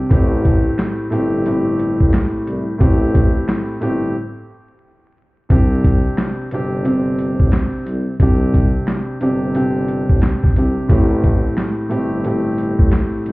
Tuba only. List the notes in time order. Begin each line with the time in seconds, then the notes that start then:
0.11 A1
1.12 G1
2.01 A1
2.47 C2
2.81 A1
3.82 G1
5.50 C2
6.52 G1
7.40 A1
7.87 C2
8.20 C2
9.21 G1
10.10 A1
10.56 C2
10.90 A1
11.91 G1
12.79 A1
13.26 C2